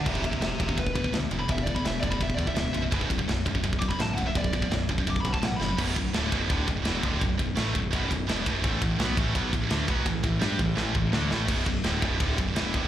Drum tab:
CC |x---------------|----------------|----------------|----------------|
RD |--x-x-x-x-x-x-x-|x-x-x-x-x-x-x-x-|x-x-x-x-x-x-x-x-|x-x-x-x-x-x-x---|
SD |----o-------o---|----o-------o---|----o-------o---|----o-------o-o-|
BD |oooo--oooooo----|oooo--oooooo----|oooo--oooooo----|oooo--oooooo----|

CC |x---------------|----------------|----------------|----------------|
RD |--x-x-x-x-x-x-x-|x-x-x-x-x-x-x-x-|x-x-x-x-x-x-x-x-|x-x-x-x---------|
SD |----o-------o---|----o-------o---|----o-------o---|----o---o---o-o-|
BD |o-o---o-o-o---o-|o-o---o-o-o---o-|o-o---o-o-o---o-|o-o---o---o-----|

CC |x---------------|
RD |x-x-x-x-x-x-x-x-|
SD |----o-------o---|
BD |o-o---o-o-o---o-|